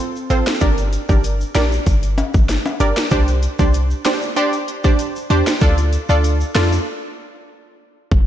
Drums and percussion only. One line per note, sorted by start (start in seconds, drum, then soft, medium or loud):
0.16 shaker medium
0.30 closed hi-hat medium
0.30 shaker soft
0.47 finger snap medium
0.47 snare loud
0.47 shaker medium
0.60 kick loud
0.60 closed hi-hat medium
0.60 shaker medium
0.78 closed hi-hat medium
0.78 shaker medium
0.93 closed hi-hat medium
0.93 shaker medium
1.09 kick loud
1.09 shaker medium
1.24 closed hi-hat medium
1.24 shaker medium
1.41 shaker medium
1.55 finger snap medium
1.55 snare loud
1.55 closed hi-hat medium
1.55 shaker medium
1.72 shaker medium
1.86 kick medium
1.86 closed hi-hat medium
1.86 shaker medium
2.03 closed hi-hat medium
2.03 shaker medium
2.18 closed hi-hat medium
2.18 high timbale medium
2.34 kick loud
2.34 shaker medium
2.49 snare medium
2.49 closed hi-hat medium
2.49 shaker medium
2.66 high timbale medium
2.66 shaker medium
2.80 closed hi-hat medium
2.80 shaker medium
2.96 finger snap medium
2.96 snare loud
2.96 shaker medium
3.10 kick loud
3.10 closed hi-hat medium
3.10 shaker medium
3.28 closed hi-hat medium
3.28 shaker medium
3.43 closed hi-hat medium
3.43 shaker medium
3.59 kick loud
3.59 shaker medium
3.74 closed hi-hat medium
3.74 shaker medium
3.91 shaker medium
4.05 finger snap medium
4.05 snare loud
4.05 closed hi-hat medium
4.05 shaker medium
4.22 shaker medium
4.36 closed hi-hat medium
4.36 shaker medium
4.53 closed hi-hat medium
4.53 shaker medium
4.68 closed hi-hat medium
4.84 kick loud
4.84 shaker medium
4.99 closed hi-hat medium
4.99 shaker medium
5.16 shaker medium
5.30 closed hi-hat medium
5.30 shaker medium
5.47 finger snap medium
5.47 snare loud
5.47 shaker medium
5.61 kick loud
5.61 closed hi-hat medium
5.61 shaker medium
5.78 closed hi-hat medium
5.78 shaker medium
5.93 closed hi-hat medium
5.93 shaker medium
6.09 shaker medium
6.24 closed hi-hat medium
6.24 shaker medium
6.41 shaker medium
6.55 finger snap loud
6.55 snare loud
6.55 closed hi-hat medium
6.55 shaker soft
6.72 shaker medium
8.12 kick loud